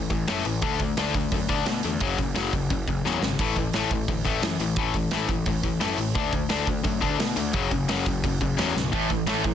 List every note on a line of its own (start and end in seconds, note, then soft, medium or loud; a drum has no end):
0.10 0.24 A1 medium
0.10 0.26 A2 medium
0.10 0.26 E3 medium
0.10 kick medium
0.10 open hi-hat medium
0.28 0.41 F#2 medium
0.28 0.44 A2 medium
0.28 0.44 E3 medium
0.28 0.45 A3 loud
0.28 snare loud
0.28 open hi-hat medium
0.45 0.59 A1 medium
0.45 0.60 A2 medium
0.45 0.61 E3 medium
0.45 open hi-hat medium
0.62 0.89 D2 medium
0.62 0.78 D3 medium
0.62 0.79 A3 loud
0.62 0.79 D4 loud
0.62 kick loud
0.62 open hi-hat medium
0.80 0.95 D3 medium
0.80 0.96 A3 medium
0.80 kick medium
0.80 open hi-hat medium
0.97 1.24 D2 medium
0.97 1.13 D3 medium
0.97 1.14 A3 loud
0.97 1.14 D4 medium
0.97 snare loud
0.97 open hi-hat medium
1.14 1.30 D3 medium
1.14 1.31 A3 medium
1.14 kick medium
1.14 open hi-hat medium
1.32 1.45 F#2 medium
1.32 1.47 D3 medium
1.32 1.48 A3 medium
1.32 kick loud
1.32 open hi-hat medium
1.49 1.62 D2 medium
1.49 1.65 D3 medium
1.49 1.65 A3 medium
1.49 1.66 D4 medium
1.49 kick medium
1.49 open hi-hat medium
1.66 1.80 B2 medium
1.66 1.82 D3 medium
1.66 1.82 A3 medium
1.66 snare loud
1.66 open hi-hat medium
1.83 1.97 E2 medium
1.83 1.99 D3 medium
1.83 2.00 A3 medium
1.83 open hi-hat medium
2.00 2.14 F#1 medium
2.00 2.17 F#2 medium
2.00 2.17 C#3 medium
2.00 2.18 F#3 loud
2.00 kick loud
2.00 open hi-hat medium
2.18 2.32 F#1 medium
2.18 2.33 F#2 medium
2.18 2.34 C#3 medium
2.18 kick medium
2.18 open hi-hat medium
2.35 2.49 F#1 medium
2.35 2.51 F#2 medium
2.35 2.52 C#3 medium
2.35 2.52 F#3 loud
2.35 snare loud
2.35 open hi-hat medium
2.53 2.66 F#1 medium
2.53 2.68 F#2 medium
2.53 2.68 C#3 medium
2.53 kick medium
2.53 open hi-hat medium
2.70 2.84 F#1 medium
2.70 2.86 F#2 medium
2.70 2.86 C#3 medium
2.70 kick loud
2.70 open hi-hat medium
2.88 3.01 F#1 medium
2.88 3.03 F#2 medium
2.88 3.03 C#3 medium
2.88 kick medium
2.88 open hi-hat medium
3.04 3.18 E2 medium
3.04 3.21 F#2 medium
3.04 3.21 C#3 medium
3.04 3.22 F#3 loud
3.04 snare medium
3.21 3.35 G#1 medium
3.21 3.38 F#2 medium
3.21 3.38 C#3 medium
3.21 snare medium
3.39 3.66 A1 medium
3.39 3.56 A2 medium
3.39 3.56 E3 medium
3.39 3.56 A3 medium
3.39 kick loud
3.39 open hi-hat medium
3.39 splash medium
3.56 3.72 A2 medium
3.56 3.72 E3 medium
3.56 kick medium
3.56 open hi-hat soft
3.73 4.01 A1 medium
3.73 3.90 A2 medium
3.73 3.91 E3 medium
3.73 3.91 A3 loud
3.73 snare loud
3.73 open hi-hat medium
3.91 4.07 A2 medium
3.91 4.07 E3 medium
3.91 kick medium
3.91 open hi-hat medium
4.08 4.22 D2 medium
4.08 4.23 A2 medium
4.08 4.24 E3 medium
4.08 kick loud
4.08 open hi-hat medium
4.25 4.39 A1 medium
4.25 4.41 A2 medium
4.25 4.41 E3 medium
4.25 4.42 A3 medium
4.25 kick medium
4.25 open hi-hat medium
4.42 4.56 F#2 medium
4.42 4.58 A2 medium
4.42 4.58 E3 medium
4.42 snare loud
4.42 open hi-hat medium
4.59 4.73 A1 medium
4.59 4.76 A2 medium
4.59 4.76 E3 medium
4.59 open hi-hat medium
4.76 4.91 A1 medium
4.76 4.94 A2 medium
4.76 4.94 E3 medium
4.76 4.95 A3 medium
4.76 kick loud
4.76 open hi-hat medium
4.94 5.08 A1 medium
4.94 5.11 A2 medium
4.94 5.11 E3 medium
4.94 kick medium
4.94 open hi-hat medium
5.11 5.26 A1 medium
5.11 5.28 A2 medium
5.11 5.29 E3 medium
5.11 5.29 A3 medium
5.11 snare loud
5.11 open hi-hat medium
5.29 5.43 A1 medium
5.29 5.45 A2 medium
5.29 5.45 E3 medium
5.29 kick medium
5.29 open hi-hat medium
5.46 5.60 A1 medium
5.46 5.62 A2 medium
5.46 5.63 E3 medium
5.46 kick loud
5.46 open hi-hat medium
5.63 5.77 A1 medium
5.63 5.79 A2 medium
5.63 5.80 E3 medium
5.63 kick medium
5.63 open hi-hat medium
5.80 5.94 F#2 medium
5.80 5.96 A2 medium
5.80 5.97 E3 medium
5.80 5.98 A3 loud
5.80 snare loud
5.80 open hi-hat medium
5.97 6.12 A1 medium
5.97 6.14 A2 medium
5.97 6.14 E3 medium
5.97 open hi-hat medium
6.15 6.43 D2 medium
6.15 6.31 D3 loud
6.15 6.32 A3 medium
6.15 6.32 D4 loud
6.15 kick loud
6.15 open hi-hat medium
6.32 6.48 D3 medium
6.32 6.49 A3 medium
6.32 kick medium
6.32 open hi-hat medium
6.49 6.77 D2 medium
6.49 6.65 D3 medium
6.49 6.66 A3 medium
6.49 6.67 D4 loud
6.49 snare loud
6.49 open hi-hat medium
6.66 6.82 D3 medium
6.66 6.83 A3 medium
6.66 kick medium
6.66 open hi-hat medium
6.83 6.99 F#2 medium
6.83 6.99 D3 medium
6.83 7.00 A3 medium
6.83 kick loud
6.83 open hi-hat medium
7.00 7.16 D2 medium
7.00 7.17 D3 medium
7.00 7.18 A3 medium
7.00 7.19 D4 loud
7.00 kick medium
7.00 open hi-hat medium
7.19 7.33 B2 medium
7.19 7.35 D3 medium
7.19 7.35 A3 medium
7.19 snare loud
7.19 open hi-hat medium
7.36 7.51 D2 medium
7.36 7.52 D3 medium
7.36 7.52 A3 medium
7.36 open hi-hat medium
7.53 7.68 F#1 medium
7.53 7.70 F#2 medium
7.53 7.70 C#3 loud
7.53 7.71 F#3 medium
7.53 kick loud
7.53 open hi-hat medium
7.71 7.85 F#1 medium
7.71 7.87 F#2 medium
7.71 7.87 C#3 medium
7.71 kick medium
7.71 open hi-hat medium
7.88 8.03 F#1 medium
7.88 8.05 F#2 medium
7.88 8.05 C#3 medium
7.88 8.05 F#3 loud
7.88 snare loud
7.88 open hi-hat medium
8.06 8.20 F#1 medium
8.06 8.22 F#2 medium
8.06 8.22 C#3 medium
8.06 kick medium
8.06 open hi-hat medium
8.24 8.37 F#1 medium
8.24 8.39 F#2 medium
8.24 8.39 C#3 medium
8.24 kick loud
8.24 open hi-hat medium
8.40 8.54 F#1 medium
8.40 8.56 F#2 medium
8.40 8.57 C#3 medium
8.40 kick medium
8.40 open hi-hat medium
8.57 8.72 E2 medium
8.57 8.74 F#2 medium
8.57 8.74 C#3 medium
8.57 8.75 F#3 loud
8.57 snare loud
8.57 open hi-hat medium
8.75 8.89 B1 medium
8.75 8.91 F#2 medium
8.75 8.91 C#3 medium
8.75 snare medium
8.92 9.20 A1 medium
8.92 9.08 A2 medium
8.92 9.09 E3 medium
8.92 9.09 A3 medium
8.92 kick loud
8.92 open hi-hat medium
9.09 9.25 A2 medium
9.09 9.26 E3 medium
9.09 kick medium
9.09 open hi-hat medium
9.26 9.54 A1 medium
9.26 9.43 A2 medium
9.26 9.43 E3 loud
9.26 9.44 A3 loud
9.26 snare loud
9.26 open hi-hat medium
9.44 9.54 A2 medium
9.44 9.54 E3 medium
9.44 kick medium
9.44 open hi-hat medium